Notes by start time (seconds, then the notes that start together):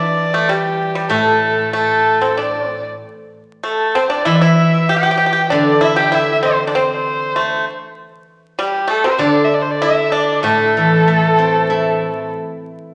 Already playing: E3 D4 E4 D5
0.34 A3
0.49 G3 G4
0.95 G3
1.09 A2 A3 A4
1.73 A3 A4
2.21 C4
2.37 D4 D5
2.66 C4
3.63 A3 A4
3.95 C4 C5
4.10 D4 D5
4.25 E3 E4 E5
4.35 D5
4.41 E4 E5
4.89 G4 G5
4.96 G4
5.03 G4
5.11 G4
5.17 G4
5.26 G4
5.33 G4
5.50 D3 D4 D5
5.81 E4 E5
5.96 G4 G5
6.12 E4 E5
6.43 C4 C5
6.67 D4 D5
6.75 C4 C5
7.36 A3
8.59 G3 G4
8.87 A3 A4
9.04 C4 C5
9.18 D3 D4 D5
9.44 E5
9.54 D5
9.62 C5
9.71 D5
9.82 E4 E5
10.12 D4 D5
10.43 A2 A3 A4
10.77 E3
11.07 A3
11.38 C4
11.70 E4